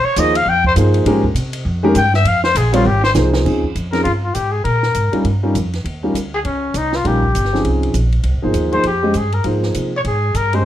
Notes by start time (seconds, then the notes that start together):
0.04 C#5, muted upright bass stroke
0.16 D#2 F3 A#3 D#4 G#4 C5 D#5, hi-hat pedal, ride
0.35 F5, ride
0.46 F2 G5
0.64 C5, kick
0.76 G2 F3 A#3 D#4 G#4 C5, hi-hat pedal, ride
0.94 ride
1.05 G#2 D#3 G#3 C#4 G4 A#4, ride
1.24 kick
1.34 C3, hi-hat pedal, ride
1.53 ride
1.65 F2
1.83 D#3 G#3 C#4 G4 A#4
1.95 G2 G5, hi-hat pedal, ride
2.14 E5, snare
2.24 F2 F5, ride
2.44 C5, snare
2.55 A#1 G#4, hi-hat pedal, ride
2.72 G3 C4 F4 A#4 C#5, ride
2.85 G#1 G4
3.04 C5, snare
3.14 C2 F3 A#3 D#4 G#4 C5, snare, hi-hat pedal
3.34 snare
3.45 D#2 F3 C4 C#4 D#4 G#4, kick, crash
3.64 kick
3.75 F2, hi-hat pedal, ride
3.92 F3 C4 C#4 D#4 G#4 A#4, snare, ride
4.03 G2 F4, ride
4.24 F4
4.34 G#2 G4, hi-hat pedal, ride
4.51 G#4
4.64 A#2 A#4, ride
4.83 snare
4.95 G#2, hi-hat pedal, ride
5.12 G3 C#4 D#4 F4 A#4, muted upright bass stroke, ride
5.24 G2, ride
5.43 G3 C#4 D#4 F4 A#4
5.55 F2, hi-hat pedal, ride
5.73 snare, ride
5.84 D#2, ride
6.03 G3 C#4 D#4 F4 A#4
6.14 D2, hi-hat pedal, ride
6.34 G#4
6.45 C#2 C#4, ride
6.74 C2 D#4, hi-hat pedal, ride
6.93 F4, snare
7.04 A#1 G3 C#4 D#4 F4 G4 A#4, ride
7.23 kick
7.35 G1, hi-hat pedal, ride
7.45 snare
7.52 F3 C4 C#4 D#4 G#4, snare
7.64 C2, ride
7.83 ride
7.94 A#1, hi-hat pedal, ride
8.12 ride
8.23 C2, ride
8.34 G#1
8.42 G1 F3 A#3 D#4 G#4 C5
8.54 D#2, hi-hat pedal, ride
8.72 F3 A#3 D#4 G#4 C5, ride
8.84 F2 G4, ride
9.03 G#3 C#4 G4 C5 D#5
9.14 G2 G#4, hi-hat pedal, ride
9.32 A#4, ride
9.44 G#2 F3 A#3 D#4 G#4 C5, ride
9.63 snare
9.74 C3, hi-hat pedal, ride
9.97 C#5
10.05 G#2 G#4, ride
10.34 G2 A#4, hi-hat pedal, ride
10.53 G#3 C#4 G4 C5 D#5, ride